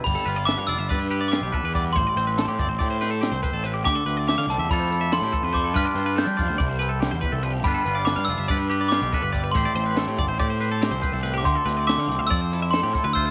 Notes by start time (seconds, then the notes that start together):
0.04 G1 G3 G4 B5, kick, crash
0.15 A4
0.26 G1 F4 B4, closed hi-hat
0.36 D5
0.45 D4 E5 D6, snare, closed hi-hat
0.58 G2 F5
0.67 F1 F4 D5 E6, closed hi-hat
0.78 G1 E5
0.89 G2 B4 D5, kick, closed hi-hat
0.99 B4
1.10 G4 B4, closed hi-hat
1.21 D5
1.28 F4 G4 D6
1.33 snare, closed hi-hat
1.42 B1 G4
1.52 A4 B4, kick, closed hi-hat
1.63 E2 B4
1.73 G3 D5, kick, closed hi-hat
1.85 B4
1.93 A1 A2 C5 C6, kick, closed hi-hat
2.07 D5
2.16 A1 C4 C5, closed hi-hat
2.27 B4
2.37 A3 A4, snare, closed hi-hat
2.48 A2 G4
2.59 G1 C4 D5, kick, closed hi-hat
2.68 A1 C5
2.79 A2 G4 D5, kick, closed hi-hat
2.90 C5
3.01 B4 C5, snare, closed hi-hat
3.11 A4
3.21 C4 G4, snare, closed hi-hat
3.32 C2 C5
3.43 B4 C5, kick, closed hi-hat
3.52 A1 A4
3.64 A2 B4, closed hi-hat
3.74 G4
3.84 D2 D3 G4 D6, kick, closed hi-hat
3.95 A4
4.05 D2 C4 B4, closed hi-hat
4.17 D5
4.28 A3 E5 D6, snare, closed hi-hat
4.38 D3 F5
4.47 C2 D5 A5, closed hi-hat
4.51 C4
4.58 E2 E5
4.70 F2 F3 A3 E4 F4 A4 D5 B5, kick, closed hi-hat
4.80 C5
4.91 E4 A4, closed hi-hat
5.01 E5
5.12 D3 A4 C6, snare, closed hi-hat
5.21 A2 G4
5.33 E3 A4, kick, closed hi-hat
5.43 F2 B4
5.53 F3 C5 D6, kick, closed hi-hat
5.64 A4
5.74 G2 G3 D4 F4 B4 F6, kick, closed hi-hat
5.85 D5
5.95 G2 F4 C5, closed hi-hat
6.06 B4
6.16 D4 A4 G6, snare, closed hi-hat
6.27 G3 G4
6.37 F2 F4 D5, kick, closed hi-hat
6.48 D2 C5
6.58 C2 C3 D5, kick, closed hi-hat
6.69 C5
6.79 E4 B4, closed hi-hat
6.89 A4
7.00 D3 G4, snare, closed hi-hat
7.11 E2 C5
7.21 E3 B4, kick, closed hi-hat
7.32 C2 A4
7.43 F3 B4, closed hi-hat
7.53 G4
7.64 G1 G3 D4 F4 G4 B4 B5, kick, closed hi-hat
7.74 A4
7.84 G1 F4 B4, closed hi-hat
7.95 D5
8.05 D4 E5 D6, snare, closed hi-hat
8.16 G2 F5
8.25 F1 D5 E6, closed hi-hat
8.29 F4
8.38 G1 E5
8.48 G2 B4 D5, kick, closed hi-hat
8.59 B4
8.70 G4 B4, closed hi-hat
8.81 D5
8.88 G4 D6, snare, closed hi-hat
8.93 F4
9.02 B1 G4
9.13 A4 B4, kick, snare, closed hi-hat
9.22 G1 B4
9.33 G3 D5, kick, closed hi-hat
9.44 B4
9.52 A1 A2 A3 C4 C5 C6, kick, closed hi-hat
9.56 G4 C5
9.65 D5
9.75 A1 C4 C5, closed hi-hat
9.86 B4
9.96 A3 A4, snare, closed hi-hat
10.07 A2 G4
10.18 G1 C4 D5, kick, closed hi-hat
10.27 A1 C5
10.39 A2 G4 D5, kick, closed hi-hat
10.50 C5
10.60 B4 C5, closed hi-hat
10.71 A4
10.81 C4 G4, snare, closed hi-hat
10.91 C2 C5
11.02 B4 C5, kick, closed hi-hat
11.13 C2 A4
11.23 A2 B4, closed hi-hat
11.34 G4 D6
11.44 D2 D3 G4 C6, kick, closed hi-hat
11.55 A4
11.66 D2 C4 B4, snare, closed hi-hat
11.77 D5
11.87 A3 E5 D6, snare, closed hi-hat
11.98 D3 F5
12.08 C2 C4 D5, closed hi-hat
12.19 D2 E5
12.27 F3 D5 E6
12.31 F2, kick, closed hi-hat
12.41 C5
12.52 E4 A4, closed hi-hat
12.62 E5
12.71 A3 A4 C6, snare, closed hi-hat
12.83 A2 G4
12.93 E4 A4, kick, snare, closed hi-hat
13.04 D2 B4
13.13 F4 C5 E6, kick, closed hi-hat
13.26 A4